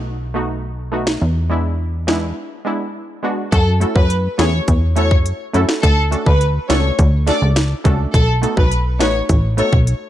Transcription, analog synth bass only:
0.00 1.18 B1 medium
1.21 2.33 E2 medium
3.52 3.85 F#2 loud
3.96 4.28 F#2 loud
4.39 4.61 E2 loud
4.68 5.13 E2 loud
5.11 5.33 F#2 medium
5.54 5.65 F#2 medium
5.83 6.16 D2 loud
6.26 6.59 D2 loud
6.70 6.92 C#2 medium
6.99 7.31 D2 loud
7.42 7.75 C#2 medium
7.85 8.07 C#2 medium
8.14 8.47 B1 loud
8.57 9.02 B1 loud
9.00 9.22 A1 loud
9.29 9.62 A1 loud
9.73 9.94 B1 loud

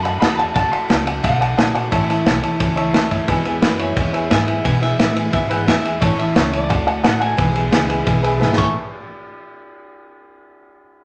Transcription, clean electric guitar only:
0.03 0.19 B5 loud
0.21 0.37 B5 loud
0.37 0.42 A5 medium
0.54 0.72 A5 loud
0.72 0.88 B5 loud
0.88 1.24 A5 medium
1.24 1.71 F#5 medium
3.62 3.80 B4 medium
3.80 4.33 C#5 medium
4.31 4.63 E5 loud
4.65 4.70 G#5 loud
4.83 5.14 E5 loud
5.34 5.51 E5 medium
5.51 5.67 F#5 medium
5.68 6.03 E5 loud
6.01 6.19 C#5 loud
6.19 6.36 E5 loud
6.36 6.53 C#5 medium
6.53 7.01 D5 loud
7.04 7.21 F#5 loud
7.21 8.54 G#5 loud
8.58 8.74 C#6 medium

